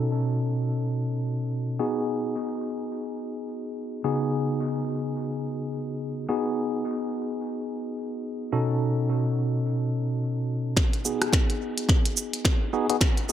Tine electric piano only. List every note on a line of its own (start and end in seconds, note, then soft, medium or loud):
0.00 1.77 B2 medium
0.00 1.77 C#4 medium
0.00 1.77 D#4 medium
0.00 1.77 F#4 medium
0.00 1.77 A4 medium
1.79 4.01 B3 medium
1.79 4.01 D#4 medium
1.79 4.01 F#4 medium
1.79 4.01 G#4 medium
4.04 6.26 C#3 medium
4.04 6.26 B3 medium
4.04 6.26 D#4 medium
4.04 6.26 F#4 medium
4.04 6.26 G#4 medium
6.29 8.50 B3 medium
6.29 8.50 D#4 medium
6.29 8.50 F#4 medium
6.29 8.50 G#4 medium
8.52 10.74 B2 medium
8.52 10.74 C#4 medium
8.52 10.74 D#4 medium
8.52 10.74 F#4 medium
8.52 10.74 A4 medium
11.05 12.70 B3 medium
11.05 12.70 D#4 medium
11.05 12.70 F#4 medium
11.05 12.70 G#4 medium
12.73 12.86 B3 medium
12.73 12.86 D#4 medium
12.73 12.86 F#4 medium
12.73 12.86 G#4 loud
12.89 12.96 B3 medium
12.89 12.96 D#4 medium
12.89 12.95 F#4 medium
12.89 12.95 G#4 loud
13.29 13.32 B3 medium
13.29 13.32 F#4 medium
13.29 13.32 G#4 medium